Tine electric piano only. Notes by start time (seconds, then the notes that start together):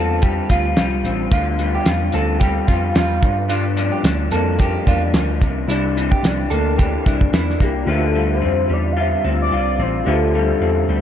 Already playing: E2
0.50 D2
0.76 C2
1.03 A1
1.31 D2
1.86 E2
2.14 D2
2.68 F2
2.96 E2
3.22 G2
4.04 D2
4.31 F2
4.87 E2
5.13 D2
5.41 C2
5.68 C2
6.22 C2
6.51 D2
7.06 C2
7.32 E2
7.60 C2
7.87 D2
8.42 F2
8.70 E2
9.25 D2
9.52 C2
9.78 A1
10.06 D2
10.61 E2
10.89 D2